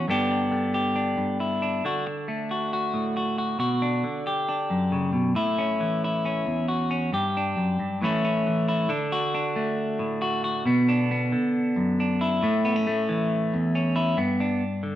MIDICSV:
0, 0, Header, 1, 3, 480
1, 0, Start_track
1, 0, Key_signature, 2, "major"
1, 0, Tempo, 440852
1, 79, Time_signature, 4, 2, 24, 8
1, 16282, End_track
2, 0, Start_track
2, 0, Title_t, "Clean electric guitar"
2, 0, Program_c, 0, 27
2, 86, Note_on_c, 0, 43, 65
2, 91, Note_on_c, 0, 50, 60
2, 104, Note_on_c, 0, 59, 56
2, 112, Note_on_c, 0, 62, 54
2, 117, Note_on_c, 0, 67, 59
2, 329, Note_off_c, 0, 62, 0
2, 333, Note_on_c, 0, 62, 51
2, 548, Note_off_c, 0, 50, 0
2, 561, Note_on_c, 0, 50, 50
2, 796, Note_off_c, 0, 67, 0
2, 809, Note_on_c, 0, 67, 48
2, 1038, Note_off_c, 0, 62, 0
2, 1042, Note_on_c, 0, 62, 50
2, 1266, Note_off_c, 0, 43, 0
2, 1279, Note_on_c, 0, 43, 54
2, 1521, Note_off_c, 0, 67, 0
2, 1527, Note_on_c, 0, 64, 49
2, 1762, Note_off_c, 0, 62, 0
2, 1766, Note_on_c, 0, 62, 50
2, 1967, Note_off_c, 0, 43, 0
2, 1978, Note_off_c, 0, 59, 0
2, 1995, Note_off_c, 0, 50, 0
2, 2000, Note_off_c, 0, 64, 0
2, 2013, Note_on_c, 0, 50, 62
2, 2023, Note_on_c, 0, 66, 56
2, 2248, Note_off_c, 0, 66, 0
2, 2484, Note_on_c, 0, 57, 52
2, 2733, Note_on_c, 0, 66, 51
2, 2970, Note_off_c, 0, 66, 0
2, 2974, Note_on_c, 0, 66, 64
2, 3198, Note_on_c, 0, 45, 55
2, 3436, Note_off_c, 0, 66, 0
2, 3449, Note_on_c, 0, 66, 48
2, 3671, Note_off_c, 0, 66, 0
2, 3684, Note_on_c, 0, 66, 54
2, 3888, Note_off_c, 0, 57, 0
2, 3889, Note_off_c, 0, 66, 0
2, 3902, Note_off_c, 0, 45, 0
2, 3907, Note_on_c, 0, 47, 64
2, 3918, Note_on_c, 0, 66, 57
2, 4156, Note_off_c, 0, 62, 0
2, 4161, Note_on_c, 0, 62, 55
2, 4386, Note_off_c, 0, 50, 0
2, 4389, Note_off_c, 0, 47, 0
2, 4399, Note_on_c, 0, 50, 45
2, 4631, Note_off_c, 0, 66, 0
2, 4647, Note_on_c, 0, 67, 55
2, 4871, Note_off_c, 0, 62, 0
2, 4884, Note_on_c, 0, 62, 59
2, 5119, Note_on_c, 0, 42, 59
2, 5359, Note_on_c, 0, 49, 58
2, 5579, Note_off_c, 0, 49, 0
2, 5584, Note_on_c, 0, 47, 61
2, 5807, Note_off_c, 0, 42, 0
2, 5810, Note_off_c, 0, 62, 0
2, 5811, Note_off_c, 0, 67, 0
2, 5823, Note_off_c, 0, 47, 0
2, 5827, Note_on_c, 0, 45, 72
2, 5836, Note_off_c, 0, 50, 0
2, 5838, Note_on_c, 0, 64, 68
2, 6080, Note_on_c, 0, 61, 58
2, 6319, Note_on_c, 0, 52, 50
2, 6556, Note_off_c, 0, 64, 0
2, 6581, Note_on_c, 0, 64, 52
2, 6797, Note_off_c, 0, 61, 0
2, 6809, Note_on_c, 0, 61, 54
2, 7032, Note_off_c, 0, 45, 0
2, 7034, Note_on_c, 0, 40, 54
2, 7274, Note_off_c, 0, 64, 0
2, 7278, Note_on_c, 0, 66, 56
2, 7508, Note_off_c, 0, 61, 0
2, 7521, Note_on_c, 0, 61, 51
2, 7729, Note_off_c, 0, 66, 0
2, 7731, Note_off_c, 0, 52, 0
2, 7731, Note_off_c, 0, 61, 0
2, 7754, Note_off_c, 0, 40, 0
2, 7758, Note_on_c, 0, 43, 69
2, 7772, Note_on_c, 0, 67, 65
2, 8024, Note_on_c, 0, 62, 55
2, 8239, Note_off_c, 0, 43, 0
2, 8244, Note_on_c, 0, 42, 56
2, 8481, Note_off_c, 0, 42, 0
2, 8487, Note_on_c, 0, 43, 55
2, 8698, Note_off_c, 0, 67, 0
2, 8704, Note_off_c, 0, 62, 0
2, 8723, Note_off_c, 0, 43, 0
2, 8727, Note_on_c, 0, 45, 60
2, 8737, Note_on_c, 0, 52, 52
2, 8746, Note_on_c, 0, 57, 45
2, 8751, Note_on_c, 0, 61, 59
2, 8758, Note_on_c, 0, 64, 60
2, 8964, Note_off_c, 0, 61, 0
2, 8977, Note_on_c, 0, 61, 56
2, 9209, Note_off_c, 0, 52, 0
2, 9220, Note_on_c, 0, 52, 57
2, 9443, Note_off_c, 0, 64, 0
2, 9456, Note_on_c, 0, 64, 57
2, 9661, Note_off_c, 0, 61, 0
2, 9663, Note_off_c, 0, 52, 0
2, 9664, Note_off_c, 0, 57, 0
2, 9680, Note_on_c, 0, 50, 80
2, 9685, Note_off_c, 0, 45, 0
2, 9686, Note_on_c, 0, 62, 56
2, 9688, Note_off_c, 0, 64, 0
2, 9933, Note_on_c, 0, 66, 70
2, 10171, Note_off_c, 0, 62, 0
2, 10175, Note_on_c, 0, 62, 55
2, 10408, Note_on_c, 0, 57, 56
2, 10880, Note_on_c, 0, 45, 58
2, 11111, Note_off_c, 0, 66, 0
2, 11124, Note_on_c, 0, 66, 70
2, 11356, Note_off_c, 0, 66, 0
2, 11369, Note_on_c, 0, 66, 56
2, 11578, Note_off_c, 0, 57, 0
2, 11578, Note_off_c, 0, 66, 0
2, 11582, Note_off_c, 0, 62, 0
2, 11597, Note_off_c, 0, 45, 0
2, 11601, Note_on_c, 0, 47, 74
2, 11614, Note_on_c, 0, 59, 68
2, 11852, Note_on_c, 0, 62, 61
2, 12085, Note_off_c, 0, 59, 0
2, 12098, Note_on_c, 0, 59, 57
2, 12316, Note_off_c, 0, 50, 0
2, 12323, Note_off_c, 0, 47, 0
2, 12329, Note_on_c, 0, 50, 60
2, 12807, Note_on_c, 0, 42, 61
2, 13048, Note_off_c, 0, 62, 0
2, 13066, Note_on_c, 0, 62, 54
2, 13294, Note_on_c, 0, 64, 63
2, 13497, Note_off_c, 0, 42, 0
2, 13503, Note_off_c, 0, 59, 0
2, 13507, Note_off_c, 0, 62, 0
2, 13527, Note_off_c, 0, 50, 0
2, 13530, Note_on_c, 0, 45, 81
2, 13540, Note_on_c, 0, 57, 58
2, 13772, Note_on_c, 0, 59, 66
2, 13891, Note_off_c, 0, 59, 0
2, 13891, Note_on_c, 0, 61, 44
2, 13999, Note_off_c, 0, 57, 0
2, 14013, Note_on_c, 0, 57, 60
2, 14251, Note_on_c, 0, 52, 60
2, 14728, Note_off_c, 0, 45, 0
2, 14737, Note_on_c, 0, 40, 64
2, 14961, Note_off_c, 0, 61, 0
2, 14974, Note_on_c, 0, 61, 55
2, 15184, Note_off_c, 0, 64, 0
2, 15197, Note_on_c, 0, 64, 62
2, 15419, Note_off_c, 0, 52, 0
2, 15420, Note_off_c, 0, 57, 0
2, 15421, Note_off_c, 0, 61, 0
2, 15425, Note_off_c, 0, 40, 0
2, 15430, Note_on_c, 0, 43, 74
2, 15438, Note_on_c, 0, 59, 61
2, 15440, Note_off_c, 0, 64, 0
2, 15682, Note_on_c, 0, 62, 54
2, 15921, Note_off_c, 0, 59, 0
2, 16147, Note_on_c, 0, 50, 57
2, 16282, Note_off_c, 0, 43, 0
2, 16282, Note_off_c, 0, 50, 0
2, 16282, Note_off_c, 0, 62, 0
2, 16282, End_track
3, 0, Start_track
3, 0, Title_t, "Muted clean electric guitar strokes"
3, 2253, Note_on_c, 9, 29, 63
3, 2362, Note_off_c, 9, 29, 0
3, 16282, End_track
0, 0, End_of_file